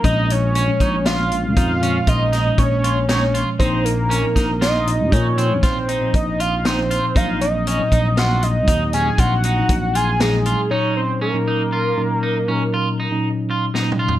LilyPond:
<<
  \new Staff \with { instrumentName = "Analog synth lead" } { \time 7/4 \key bes \minor \tempo 4 = 118 ees''8 des''4. f''4 f''4 ees''4 des''4 des''8. r16 | c''8 bes'4. ees''4 des''4 c''4 ees''8 f''8 c''4 | f''8 ees''4. ges''8 ees''4 aes''8 ges''4. aes''8 aes'4 | des''8 c''8 bes'1~ bes'4 r4 | }
  \new Staff \with { instrumentName = "Clean electric guitar" } { \time 7/4 \key bes \minor ees'4 des'8 ees'8 f'4 ees'8 des'8 f'8 ees'4 f'8 ees'8 f'8 | ees'4 des'8 ees'8 f'4 ees'8 c'8 f'8 ees'4 f'8 ees'8 f'8 | ees'4 des'8 ees'8 f'4 ees'8 des'8 f'8 ees'4 f'8 ees'8 f'8 | ees'4 des'8 ees'8 f'4 ees'8 des'8 f'8 ees'4 f'8 ees'8 f'8 | }
  \new Staff \with { instrumentName = "Tine electric piano" } { \clef bass \time 7/4 \key bes \minor <bes, f aes des'>4~ <bes, f aes des'>16 <bes, f aes des'>4~ <bes, f aes des'>16 <bes, f aes des'>4 <bes, f aes des'>4~ <bes, f aes des'>16 <bes, f aes des'>4~ <bes, f aes des'>16 <bes, f aes des'>4 | <bes, f c' ees'>4~ <bes, f c' ees'>16 <bes, f c' ees'>4~ <bes, f c' ees'>16 <bes, f c' ees'>4 <bes, f c' ees'>4~ <bes, f c' ees'>16 <bes, f c' ees'>4~ <bes, f c' ees'>16 <bes, f c' ees'>4 | <bes, ges c' ees'>4~ <bes, ges c' ees'>16 <bes, ges c' ees'>4~ <bes, ges c' ees'>16 <bes, ges c' ees'>4 <bes, ges c' ees'>4~ <bes, ges c' ees'>16 <bes, ges c' ees'>4~ <bes, ges c' ees'>16 <bes, ges c' ees'>4 | <bes, ges des' ees'>4~ <bes, ges des' ees'>16 <bes, ges des' ees'>4~ <bes, ges des' ees'>16 <bes, ges des' ees'>4 <bes, ges des' ees'>4~ <bes, ges des' ees'>16 <bes, ges des' ees'>4~ <bes, ges des' ees'>16 <bes, ges des' ees'>4 | }
  \new Staff \with { instrumentName = "Fretless electric bass" } { \clef bass \time 7/4 \key bes \minor bes,,4. bes,,4. f,4 bes,,4 bes,,2 | bes,,4. bes,,4. bes,4 bes,,4 bes,,2 | bes,,4. bes,,4. ees,4 bes,,4 bes,,2 | r1. r4 | }
  \new DrumStaff \with { instrumentName = "Drums" } \drummode { \time 7/4 <hh bd>8 hh8 hh8 <hh bd>8 <hh sn>8 hh8 <hh bd>8 hh8 <hh bd>8 <hh sn>8 <hh bd>8 hh8 <hh sn>8 hh8 | <hh bd>8 hh8 hh8 <hh bd sn>8 <hh sn>8 hh8 <hh bd>8 hh8 <hh bd sn>8 hh8 <hh bd>8 hh8 <hh sn>8 hh8 | <hh bd>8 hh8 hh8 <hh bd>8 <hh sn>8 hh8 <hh bd>8 hh8 <hh bd>8 hh8 <hh bd>8 hh8 <hh sn>8 hh8 | r4 r4 r4 r4 r4 r4 \tuplet 3/2 { sn8 toml8 tomfh8 } | }
>>